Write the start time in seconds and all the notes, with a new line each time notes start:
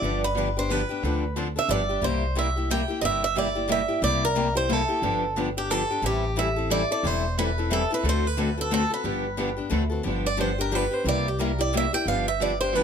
Already playing: D5
0.02 G1 D3 F3 B3 D4 G4
0.24 B4
0.37 D3 F3 B3 D4 G4
0.57 B3 D4 G4 C5
0.70 D3 F3 B3 D4 G4 B4
0.89 B3 D4 G4
1.03 D2 D3 F3 C4 D4 A4
1.36 D3 F3 C4 D4 A4
1.56 C4 D4 A4 E5
1.68 G1 D3 F3 B3 D4 G4 D5
1.89 B3 D4 G4
2.01 C2 C3 G3 A#3 E4 G4 C5
2.35 C3 G3 A#3 E4 G4 E5
2.56 A#3 E4 G4
2.71 C3 G3 A#3 E4 G4 G5
2.88 A#3 E4 G4
3.01 G1 C3 G3 A#3 E4 G4 D#5 E5
3.24 E5
3.35 C3 G3 A#3 E4 G4 D5
3.55 A#3 E4 G4
3.68 C3 G3 A#3 E4 G4
3.72 E5
3.88 A#3 E4 G4
4.02 C2 C3 G3 A#3 E4 G4 D5
4.25 A#4
4.35 C3 G3 A#3 E4 G4
4.55 A#3 E4 G4 C5
4.69 C3 G3 A#3 E4 G4 A4
4.89 A#3 E4 G4
5.02 G1 D3 F3 B3 D4 G4
5.36 D3 F3 B3 D4 G4
5.57 B3 D4 G4
5.70 D3 F3 B3 D4 G4 A4
5.91 B3 D4 G4
6.02 A1 E3 G3 C4 E4 G4 A4
6.36 E3 G3 C4 E4 A4 E5
6.56 C4 E4 A4
6.71 E3 G3 C4 E4 A4 D5
6.91 C4 E4 A4 D5
7.03 E1 E3 G3 C4 E4 A4 C5
7.39 E3 G3 C4 E4 A4 B4
7.58 C4 E4 A4
7.71 E3 G3 C4 E4 A4
7.91 C4 E4 A4 B4
8.04 D2 D3 A3 C4 F#4 A4
8.09 C5
8.27 B4
8.37 D3 A3 C4 F#4 A4
8.57 C4 F#4 A4
8.71 D3 A3 C4 F#4 A4
8.90 C4 F#4 A4 B4
9.04 G1 D3 F3 B3 D4 G4
9.37 D3 F3 B3 D4 G4
9.57 B3 D4 G4
9.70 D2 D3 A3 C4 F#4 A4
9.90 C4 F#4 A4
10.03 G1 D3 F3 B3 D4 G4
10.07 F3
10.26 D5
10.37 D3 F3 B3 D4 G4 C5
10.58 B3 D4 G4 A#4
10.71 D3 F3 B3 D4 G4 B4
10.91 B3 D4 G4 C5
11.05 C2 C3 G3 A#3 E4 G4 D5
11.28 G4
11.39 C3 G3 A#3 E4 G4 A#4
11.59 A#3 E4 G4 D5
11.73 C3 G3 A#3 E4 G4
11.77 E5
11.93 A#3 E4 G4 G5
12.06 G1 D3 F3 B3 D4 G4 F5
12.28 E5
12.41 D3 F3 B3 D4 G4 D5
12.61 B3 D4 G4 C5
12.75 D3 F3 B3 D4 G4 B4